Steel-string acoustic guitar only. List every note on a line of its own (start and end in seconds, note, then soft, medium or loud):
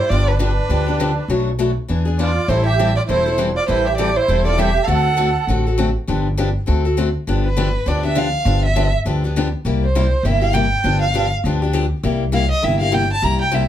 0.11 0.30 D3 medium
0.11 0.30 F3 medium
0.11 0.30 B3 medium
0.11 0.30 D4 medium
0.11 0.31 G4 medium
0.39 0.50 D3 medium
0.39 0.50 F3 medium
0.39 0.51 B3 medium
0.39 0.51 D4 medium
0.39 0.51 G4 medium
0.70 0.87 D3 medium
0.70 0.87 F3 medium
0.70 0.87 B3 medium
0.70 0.87 D4 medium
0.70 0.85 G4 medium
0.86 0.99 B3 soft
0.86 0.99 D4 soft
0.86 0.99 G4 soft
1.00 1.10 D3 medium
1.00 1.11 F3 medium
1.00 1.11 B3 medium
1.00 1.11 D4 medium
1.00 1.11 G4 medium
1.30 1.49 B2 medium
1.30 1.49 F#3 medium
1.30 1.49 A3 medium
1.30 1.49 D4 medium
1.30 1.49 F#4 medium
1.59 1.70 B2 medium
1.59 1.70 F#3 medium
1.59 1.70 A3 medium
1.59 1.70 D4 medium
1.59 1.70 F#4 medium
1.88 2.06 E3 medium
1.88 2.06 B3 medium
1.88 2.06 D4 medium
1.88 2.04 G#4 medium
2.05 2.18 B3 soft
2.05 2.18 D4 soft
2.05 2.18 G#4 soft
2.19 2.30 E3 medium
2.19 2.30 B3 medium
2.19 2.30 D4 medium
2.19 2.30 G#4 medium
2.49 2.68 E3 medium
2.49 2.69 G3 soft
2.49 2.69 C4 medium
2.49 2.69 E4 medium
2.49 2.69 A4 medium
2.79 2.90 E3 medium
2.79 2.90 G3 medium
2.79 2.90 C4 medium
2.79 2.90 E4 medium
2.79 2.90 A4 medium
3.09 3.26 E3 medium
3.09 3.26 G3 medium
3.09 3.26 C4 medium
3.09 3.26 E4 medium
3.09 3.25 A4 medium
3.26 3.37 C4 soft
3.26 3.38 E4 soft
3.26 3.38 A4 soft
3.38 3.49 E3 medium
3.38 3.49 G3 medium
3.38 3.49 C4 medium
3.38 3.49 E4 medium
3.38 3.50 A4 medium
3.68 3.88 E3 medium
3.68 3.88 G3 medium
3.68 3.88 C4 medium
3.68 3.88 E4 medium
3.68 3.88 A4 medium
3.98 4.09 E3 medium
3.98 4.09 G3 medium
3.98 4.09 C4 medium
3.98 4.09 E4 medium
3.98 4.10 A4 medium
4.28 4.45 E3 medium
4.28 4.46 G3 medium
4.28 4.46 C4 medium
4.28 4.45 E4 medium
4.28 4.44 A4 medium
4.45 4.58 C4 soft
4.45 4.58 E4 soft
4.45 4.57 A4 soft
4.58 4.69 E3 medium
4.58 4.69 G3 medium
4.58 4.69 C4 medium
4.58 4.69 E4 medium
4.58 4.70 A4 medium
4.88 5.07 D3 medium
4.88 5.07 A3 medium
4.88 5.08 C4 medium
4.88 5.08 F#4 medium
4.88 5.08 A4 medium
5.17 5.28 D3 medium
5.17 5.28 A3 medium
5.17 5.29 C4 medium
5.17 5.28 F#4 medium
5.17 5.29 A4 medium
5.48 5.65 D3 medium
5.48 5.65 A3 medium
5.48 5.66 C4 medium
5.48 5.66 F#4 medium
5.48 5.66 A4 medium
5.67 5.77 C4 soft
5.67 5.78 F#4 soft
5.67 5.78 A4 soft
5.78 5.88 D3 medium
5.78 5.88 A3 medium
5.78 5.89 C4 medium
5.78 5.89 F#4 medium
5.78 5.89 A4 medium
6.07 6.27 D3 soft
6.07 6.27 F3 medium
6.07 6.27 B3 medium
6.07 6.27 D4 medium
6.07 6.27 G4 medium
6.38 6.48 D3 medium
6.38 6.48 F3 medium
6.38 6.48 B3 medium
6.38 6.49 D4 medium
6.38 6.49 G4 medium
6.66 6.84 D3 soft
6.66 6.84 A3 medium
6.66 6.84 C4 medium
6.66 6.84 F#4 medium
6.66 6.84 A4 medium
6.85 6.96 C4 soft
6.85 6.97 F#4 soft
6.85 6.96 A4 soft
6.97 7.08 D3 medium
6.97 7.08 A3 medium
6.97 7.08 C4 medium
6.97 7.08 F#4 medium
6.97 7.08 A4 medium
7.27 7.46 D3 medium
7.27 7.47 F3 medium
7.27 7.47 B3 medium
7.27 7.47 D4 medium
7.27 7.47 G4 medium
7.57 7.67 D3 medium
7.57 7.68 F3 medium
7.57 7.68 B3 medium
7.57 7.68 D4 medium
7.57 7.68 G4 medium
7.86 8.03 D3 medium
7.86 8.03 F3 medium
7.86 8.04 B3 medium
7.86 8.03 D4 medium
7.86 8.02 G4 medium
8.03 8.15 B3 soft
8.03 8.15 D4 soft
8.03 8.15 G4 soft
8.15 8.26 D3 medium
8.15 8.27 F3 medium
8.15 8.27 B3 medium
8.15 8.27 D4 medium
8.15 8.27 G4 medium
8.46 8.65 D3 medium
8.46 8.65 F3 medium
8.46 8.66 B3 medium
8.46 8.66 D4 medium
8.46 8.66 G4 medium
8.76 8.87 D3 medium
8.76 8.87 F3 medium
8.76 8.87 B3 medium
8.76 8.87 D4 medium
8.76 8.87 G4 medium
9.06 9.23 D3 medium
9.06 9.23 F3 medium
9.06 9.23 B3 medium
9.06 9.23 D4 medium
9.06 9.23 G4 medium
9.24 9.36 B3 soft
9.24 9.36 D4 medium
9.24 9.35 G4 medium
9.36 9.46 D3 medium
9.36 9.47 F3 medium
9.36 9.47 B3 medium
9.36 9.47 D4 medium
9.36 9.47 G4 medium
9.65 9.84 C3 medium
9.65 9.85 G3 medium
9.65 9.85 A#3 medium
9.65 9.85 E4 medium
9.65 9.85 G4 medium
9.95 10.06 C3 medium
9.95 10.06 G3 medium
9.95 10.06 A#3 medium
9.95 10.06 E4 medium
9.95 10.06 G4 medium
10.25 10.42 C3 medium
10.25 10.42 G3 medium
10.25 10.42 A#3 medium
10.25 10.42 E4 medium
10.25 10.40 G4 medium
10.42 10.53 A#3 soft
10.42 10.53 E4 soft
10.42 10.54 G4 medium
10.53 10.65 C3 medium
10.53 10.65 G3 medium
10.53 10.65 A#3 loud
10.53 10.65 E4 medium
10.53 10.65 G4 medium
10.83 11.03 D3 medium
10.83 11.04 F3 medium
10.83 11.04 B3 medium
10.83 11.04 D4 medium
10.83 11.04 G4 medium
11.14 11.25 D3 medium
11.14 11.25 F3 medium
11.14 11.25 B3 medium
11.14 11.25 D4 medium
11.14 11.25 G4 medium
11.45 11.62 D3 medium
11.45 11.62 F3 medium
11.45 11.62 B3 medium
11.45 11.62 D4 medium
11.45 11.61 G4 medium
11.62 11.72 B3 soft
11.62 11.74 D4 soft
11.62 11.73 G4 soft
11.73 11.84 D3 medium
11.73 11.84 F3 medium
11.73 11.84 B3 medium
11.73 11.85 D4 medium
11.73 11.85 G4 medium
12.04 12.23 C3 medium
12.04 12.23 G3 medium
12.04 12.23 A#3 medium
12.04 12.23 E4 medium
12.04 12.23 G4 medium
12.32 12.43 C3 medium
12.32 12.43 G3 medium
12.32 12.44 A#3 medium
12.32 12.44 E4 medium
12.32 12.44 G4 medium
12.62 12.80 C3 medium
12.62 12.80 G3 medium
12.62 12.80 A#3 medium
12.62 12.80 E4 medium
12.62 12.80 G4 medium
12.81 12.91 A#3 soft
12.81 12.91 E4 medium
12.81 12.91 G4 soft
12.92 13.03 C3 medium
12.92 13.03 G3 medium
12.92 13.03 A#3 medium
12.92 13.03 E4 medium
12.92 13.03 G4 medium
13.22 13.42 C3 medium
13.22 13.42 G3 medium
13.22 13.42 A#3 medium
13.22 13.42 E4 medium
13.22 13.42 G4 medium
13.51 13.63 C3 medium
13.51 13.63 G3 medium
13.51 13.63 A#3 medium
13.51 13.63 E4 medium
13.51 13.63 G4 medium